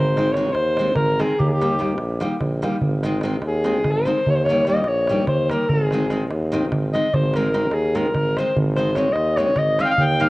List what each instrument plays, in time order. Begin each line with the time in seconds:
Already playing: tuba G#1, alto saxophone C5
0.08 darbuka tek
0.17 nylon-string guitar D#3 G#3 C4 D#4, darbuka tek
0.32 alto saxophone C#5, darbuka tek
0.36 nylon-string guitar D#3 G#3 C4 D#4
0.52 tuba D#2, alto saxophone C5, darbuka tek
0.67 darbuka tek
0.77 nylon-string guitar D#3 G#3 C4 D#4, darbuka tek
0.87 darbuka tek
0.95 tuba G#1, alto saxophone A#4, darbuka tek, darbuka dum
1.08 darbuka tek
1.19 nylon-string guitar D#3 G#3 C4 D#4, alto saxophone G#4, darbuka tek
1.31 darbuka tek
1.39 tuba D#2, alto saxophone G4, darbuka dum
1.48 alto saxophone G#4
1.53 alto saxophone G4
1.61 nylon-string guitar D#3 G3 A#3 D#4, darbuka tek
1.71 darbuka tek
1.79 nylon-string guitar D#3 G3 A#3 D#4, darbuka tek
1.90 darbuka tek
1.98 tuba A#1, darbuka tek
2.10 darbuka tek
2.20 nylon-string guitar D#3 G3 A#3 D#4, darbuka tek
2.32 darbuka tek
2.40 tuba A#1, darbuka tek, darbuka dum
2.54 darbuka tek
2.62 nylon-string guitar D#3 G3 A#3 D#4, darbuka tek
2.73 darbuka tek
2.82 tuba G#1, darbuka dum
2.92 darbuka tek
3.03 nylon-string guitar D#3 G#3 C4 D#4, darbuka tek
3.21 nylon-string guitar D#3 G#3 C4 D#4, darbuka tek
3.42 tuba D#2, darbuka tek
3.47 alto saxophone G#4
3.54 darbuka tek
3.64 nylon-string guitar D#3 G#3 C4 D#4, darbuka tek
3.75 darbuka tek
3.84 tuba G#1, darbuka tek, darbuka dum
3.91 alto saxophone C5
3.96 darbuka tek
4.05 nylon-string guitar D#3 G#3 C4 D#4
4.17 darbuka tek
4.27 tuba D#2, alto saxophone C#5, darbuka dum
4.35 alto saxophone C5, darbuka tek
4.44 alto saxophone C#5, darbuka tek
4.49 nylon-string guitar D#3 G3 A#3 D#4
4.65 nylon-string guitar D#3 G3 A#3, alto saxophone D#5, darbuka tek
4.70 nylon-string guitar D#4
4.84 tuba A#1, alto saxophone C#5, darbuka tek
4.97 darbuka tek
5.07 nylon-string guitar D#3 G3 A#3, darbuka tek
5.12 nylon-string guitar D#4
5.17 darbuka tek
5.27 tuba D#2, alto saxophone C5, darbuka tek, darbuka dum
5.39 darbuka tek
5.50 nylon-string guitar D#3 G3 A#3 D#4, alto saxophone A#4, darbuka tek
5.60 darbuka tek
5.69 tuba G#1, alto saxophone G#4, darbuka dum
5.81 darbuka tek
5.91 nylon-string guitar D#3 G#3 C4 D#4, darbuka tek
6.10 nylon-string guitar D#3 G#3 C4 D#4, darbuka tek
6.30 tuba D#2, darbuka tek
6.42 darbuka tek
6.52 nylon-string guitar D#3 G#3 C4 D#4, darbuka tek
6.63 darbuka tek
6.71 tuba G#1, darbuka tek, darbuka dum
6.83 darbuka tek
6.93 nylon-string guitar D#3 G#3 C4 D#4, alto saxophone D#5, darbuka tek
7.04 darbuka tek
7.14 tuba G#1, alto saxophone C5, darbuka dum
7.24 darbuka tek
7.34 nylon-string guitar D#3 G#3 C4 D#4, alto saxophone A#4, darbuka tek
7.43 darbuka tek
7.54 nylon-string guitar D#3 G#3 C4 D#4, darbuka tek
7.63 darbuka tek
7.71 tuba D#2, alto saxophone G#4, darbuka tek
7.84 darbuka tek
7.95 nylon-string guitar D#3 G#3 C4 D#4, alto saxophone A#4, darbuka tek
8.14 tuba G#1, darbuka tek, darbuka dum
8.25 darbuka tek
8.37 nylon-string guitar D#3 G#3 C4 D#4, alto saxophone C5, darbuka tek
8.55 tuba G#1, darbuka dum
8.67 darbuka tek
8.76 nylon-string guitar D#3 G#3 C4 D#4, alto saxophone C5, darbuka tek
8.95 nylon-string guitar D#3 G#3 C4 D#4, alto saxophone C#5, darbuka tek
9.12 tuba D#2, alto saxophone D#5, darbuka tek
9.26 darbuka tek
9.37 nylon-string guitar D#3 G#3 C4 D#4, alto saxophone C#5, darbuka tek
9.47 darbuka tek
9.56 tuba G#1, alto saxophone D#5, darbuka tek, darbuka dum
9.69 darbuka tek
9.79 nylon-string guitar D#3 G#3 C4 D#4, alto saxophone F5, darbuka tek
9.85 alto saxophone G5
9.89 alto saxophone F5, darbuka tek
9.98 tuba D#2, alto saxophone G5, darbuka dum
10.10 darbuka tek
10.20 nylon-string guitar D#3 G3 A#3 D#4, alto saxophone F5, darbuka tek